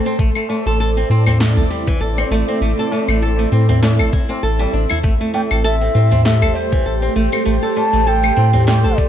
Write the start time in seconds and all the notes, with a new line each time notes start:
Already playing: A3 A4 C5
0.05 C4, shaker
0.19 A1 A3 C4 E4 D5, kick, shaker
0.35 A3, claves, shaker
0.49 A3, tabla na
0.66 A1 A4, shaker
0.80 A4, shaker
0.96 C4, shaker
1.10 A2 C4
1.26 C4, tabla tin, tabla ge, claves, shaker
1.40 A3, snare, shaker
1.57 A1 A4, tabla ge, shaker
1.70 G3
1.87 E3, kick, tabla tin, shaker
2.01 A1 A4, shaker
2.18 C4, tabla tin, claves, shaker
2.31 A1 A3
2.48 C4, shaker
2.61 A1 A3 E5, shaker
2.79 A4, tabla na, shaker
2.92 A3, tabla na
3.08 A1 A3, claves, shaker
3.22 A4, shaker
3.39 A3, shaker
3.52 A2 C4
3.69 C4, tabla tin, tabla ge, shaker
3.83 A3, snare, tabla na, shaker
3.99 A1 A4, claves, shaker
4.13 E4, kick, tabla tin
4.29 C4, tabla na, tabla tin, shaker
4.43 A1 A4, shaker
4.59 G3, tabla na, tabla tin, shaker
4.73 A1 D4
4.90 E4, tabla tin, tabla ge, claves, shaker
5.03 A1 A3 G4 C5, kick, shaker
5.21 A3, shaker
5.34 A3 G5, tabla na
5.51 A1 A4, claves, shaker
5.64 A4 E5, shaker
5.81 C4, shaker
5.95 A2 C4
6.12 C4, tabla tin, tabla ge, shaker
6.24 A3 E5, snare, shaker
6.42 A1 A4, tabla ge, claves, shaker
6.55 G3 C5
6.72 E3, kick, tabla tin, shaker
6.86 A1 A4, shaker
7.02 C4, tabla tin, shaker
7.16 A1 A3
7.32 C4, claves, shaker
7.45 A1 A3, shaker
7.63 A4, tabla na, shaker
7.76 A3 A5, tabla na
7.93 A1 A3, shaker
8.07 A4 G5, shaker
8.23 A3, claves, shaker
8.36 A2 C4
8.53 C4, tabla tin, tabla ge, shaker
8.67 A3 G5, snare, tabla na, shaker
8.84 A1 A4, shaker
8.97 A3 D5, kick, tabla tin